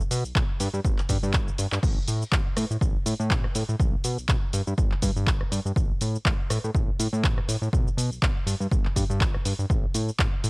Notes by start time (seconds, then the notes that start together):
0.00 cabasa
0.11 B2, open hi-hat, cabasa
0.24 B1, cabasa
0.35 B1, kick, clap, cabasa
0.60 G2, open hi-hat, cabasa
0.74 G2, cabasa
0.85 G1, kick, cabasa
0.98 clap, cabasa
1.09 G2, kick, open hi-hat, cabasa
1.23 G2, cabasa
1.34 G1, kick, clap, cabasa
1.48 cabasa
1.58 G2, open hi-hat, cabasa
1.72 G2, clap, cabasa
1.83 A1, kick, crash, cabasa
2.08 A2, open hi-hat, cabasa
2.22 cabasa
2.32 A1, kick, clap, cabasa
2.57 A2, cross-stick, open hi-hat, cabasa
2.71 A2, cabasa
2.81 A1, kick, cabasa
3.06 A2, open hi-hat, cabasa
3.20 A2, cabasa
3.30 A1, kick, clap, cabasa
3.44 cross-stick
3.55 A2, open hi-hat, cabasa
3.69 A2, cabasa
3.80 B1, kick, cabasa
4.04 B2, open hi-hat, cabasa
4.18 B1, cabasa
4.29 B1, kick, clap, cabasa
4.53 G2, open hi-hat, cabasa
4.67 G2, cabasa
4.78 G1, kick, cabasa
4.92 clap
5.02 G2, kick, open hi-hat, cabasa
5.16 G2, cabasa
5.27 G1, kick, clap, cabasa
5.41 cross-stick
5.52 G2, open hi-hat, cabasa
5.65 G2, cabasa
5.76 A1, kick, cabasa
6.01 A2, open hi-hat, cabasa
6.15 cabasa
6.25 A1, kick, clap, cabasa
6.50 A2, cross-stick, open hi-hat, cabasa
6.64 A2, cabasa
6.75 A1, kick, cabasa
6.99 A2, open hi-hat, cabasa
7.13 A2, cabasa
7.24 A1, kick, clap, cabasa
7.38 cross-stick
7.48 A2, open hi-hat, cabasa
7.62 A2, cabasa
7.73 B1, kick, cabasa
7.88 cabasa
7.97 B2, open hi-hat, cabasa
8.11 B1, cabasa
8.22 B1, kick, clap, cabasa
8.46 G2, open hi-hat, cabasa
8.60 G2, cabasa
8.71 G1, kick, cabasa
8.85 clap
8.96 G2, kick, open hi-hat, cabasa
9.10 G2, cabasa
9.21 G1, kick, clap, cabasa
9.34 cross-stick
9.45 G2, open hi-hat, cabasa
9.59 G2, cabasa
9.70 A1, kick, cabasa
9.94 A2, open hi-hat, cabasa
10.09 cabasa
10.19 A1, kick, clap, cabasa
10.44 A2, open hi-hat, cabasa